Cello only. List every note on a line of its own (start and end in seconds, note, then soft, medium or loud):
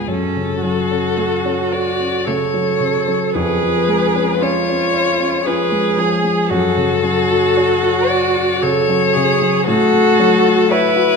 0.07 0.58 C#4 medium
0.61 2.26 F#4 medium
2.25 3.36 A4 medium
3.34 4.39 G#4 medium
4.39 5.43 F4 medium
5.45 6.52 G#4 medium
6.50 7.03 F#4 medium
7.03 8.64 F#4 medium
8.62 9.15 A4 medium
9.13 9.65 G#4 medium
9.66 10.68 F#4 medium
10.71 11.16 E4 medium